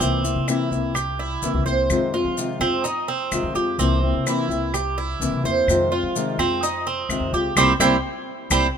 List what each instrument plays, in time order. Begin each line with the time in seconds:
0.00 upright bass C2, nylon-string guitar C3 E3 A#3 C4 E4, cuban tres C4, maracas
0.24 nylon-string guitar A#3 C4 E4, maracas
0.36 upright bass C3
0.48 nylon-string guitar C3 E3 A#3 C4 E4, cuban tres E4, claves, maracas
0.71 upright bass C2, nylon-string guitar A#3 C4 E4, maracas
0.95 cuban tres G4, muted nylon-string guitar stroke, claves, maracas
1.19 cuban tres E4
1.42 upright bass C2, nylon-string guitar C3 E3 A#3 C4 E4, maracas
1.54 upright bass C2
1.66 upright bass C2, nylon-string guitar A#3 C4 E4, cuban tres C5, maracas
1.89 upright bass F2, nylon-string guitar C3 D#3 G#3 C4 F4, claves, maracas
2.14 nylon-string guitar G#3 C4 F4, cuban tres F4
2.25 upright bass F3
2.37 nylon-string guitar C3 D#3 G#3 C4 F4, maracas
2.60 upright bass F2, nylon-string guitar G#3 C4 F4, cuban tres C4, claves, maracas
2.84 cuban tres D#4, muted nylon-string guitar stroke, maracas
3.08 cuban tres C4
3.31 upright bass F2, nylon-string guitar C3 D#3 G#3 C4 F4, claves, maracas
3.43 upright bass F2
3.55 upright bass F2, nylon-string guitar G#3 C4 F4, cuban tres G4, maracas
3.78 upright bass C2, nylon-string guitar C3 E3 A#3 C4 E4, cuban tres C4, maracas
4.03 nylon-string guitar A#3 C4 E4
4.14 upright bass C3
4.26 nylon-string guitar C3 E3 A#3 C4 E4, cuban tres E4, claves, maracas
4.49 upright bass C2, nylon-string guitar A#3 C4 E4, maracas
4.74 cuban tres G4, muted nylon-string guitar stroke, claves, maracas
4.98 cuban tres E4
5.20 upright bass C2, nylon-string guitar C3 E3 A#3 C4 E4, maracas
5.31 upright bass C2
5.44 upright bass E2, nylon-string guitar A#3 C4 E4, cuban tres C5, maracas
5.67 upright bass F2, nylon-string guitar C3 D#3 G#3 C4 F4, claves, maracas
5.91 nylon-string guitar G#3 C4 F4, cuban tres F4
6.03 upright bass F3
6.15 nylon-string guitar C3 D#3 G#3 C4 F4, maracas
6.38 upright bass F2, nylon-string guitar G#3 C4 F4, cuban tres C4, claves, maracas
6.63 cuban tres D#4, muted nylon-string guitar stroke, maracas
6.87 cuban tres C4
7.09 upright bass F2, nylon-string guitar C3 D#3 G#3 C4 F4, claves, maracas
7.20 upright bass F2
7.33 upright bass C#2, nylon-string guitar G#3 C4 F4, cuban tres G4, maracas
7.56 upright bass C2, nylon-string guitar G3 A#3 C4, cuban tres C4 E4 G4, claves, maracas
7.80 upright bass C2, nylon-string guitar G3 A#3 C4, cuban tres C4 E4 G4, claves, maracas
8.50 upright bass C2, nylon-string guitar G3 A#3 C4, cuban tres C4 E4 G4, claves, maracas